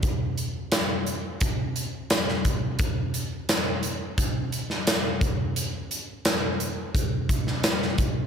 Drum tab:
HH |x-x-x-x-x-x-x-x-|x-x-x-x-x-x-x-x-|x-x-x-x-x-x-x-x-|
TB |----x-------x---|----x-------x---|----x-------x---|
SD |----o-------oo--|----o------oo---|----o------ooo--|
BD |o-------o-----o-|o-------o-----o-|--------o-o---o-|